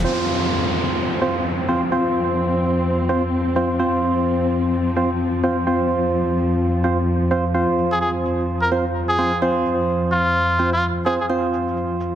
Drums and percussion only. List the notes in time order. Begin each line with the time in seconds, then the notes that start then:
0.05 shaker
1.83 shaker
2.16 shaker
2.30 shaker
2.39 shaker
2.63 shaker
2.77 shaker
2.86 shaker
3.10 shaker
3.24 shaker
3.33 shaker
3.57 shaker
3.71 shaker
3.80 shaker
4.03 shaker
4.18 shaker
4.27 shaker
4.50 shaker
4.65 shaker
4.74 shaker
4.97 shaker
5.11 shaker
5.21 shaker
5.44 shaker
5.58 shaker
5.67 shaker
5.91 shaker
6.05 shaker
6.14 shaker
6.38 shaker
6.52 shaker
6.61 shaker
6.85 shaker
6.99 shaker
7.08 shaker
7.32 shaker
7.46 shaker
7.55 shaker
7.78 shaker
8.25 shaker
8.40 shaker
8.49 shaker
8.72 shaker
8.86 shaker
8.96 shaker
9.42 shaker
9.66 shaker
9.80 shaker
9.89 shaker
10.13 shaker
10.27 shaker
10.60 shaker
10.74 shaker
11.07 shaker
11.21 shaker
11.30 shaker
11.53 shaker
11.68 shaker
11.77 shaker
12.00 shaker